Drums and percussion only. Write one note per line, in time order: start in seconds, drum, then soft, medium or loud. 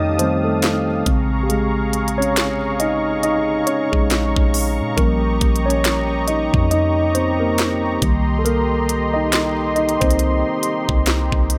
0.19 closed hi-hat medium
0.62 snare loud
0.62 closed hi-hat medium
1.06 kick loud
1.06 closed hi-hat medium
1.50 closed hi-hat medium
1.93 closed hi-hat medium
2.08 closed hi-hat medium
2.22 closed hi-hat medium
2.37 snare loud
2.37 closed hi-hat medium
2.80 closed hi-hat medium
3.23 closed hi-hat medium
3.67 closed hi-hat medium
3.93 kick medium
4.10 snare loud
4.10 closed hi-hat medium
4.36 kick loud
4.54 open hi-hat medium
4.98 kick loud
4.98 closed hi-hat medium
5.41 kick loud
5.41 closed hi-hat medium
5.56 closed hi-hat medium
5.70 closed hi-hat medium
5.84 snare loud
5.84 closed hi-hat medium
6.28 closed hi-hat medium
6.54 kick loud
6.71 closed hi-hat medium
7.15 closed hi-hat medium
7.58 snare loud
7.58 closed hi-hat medium
8.02 kick loud
8.02 closed hi-hat medium
8.46 closed hi-hat medium
8.89 closed hi-hat medium
9.32 snare loud
9.32 closed hi-hat medium
9.76 closed hi-hat soft
9.89 closed hi-hat medium
10.01 kick loud
10.01 closed hi-hat medium
10.11 closed hi-hat medium
10.19 closed hi-hat medium
10.63 closed hi-hat medium
10.89 kick loud
11.06 snare loud
11.06 closed hi-hat medium
11.32 kick medium
11.50 closed hi-hat medium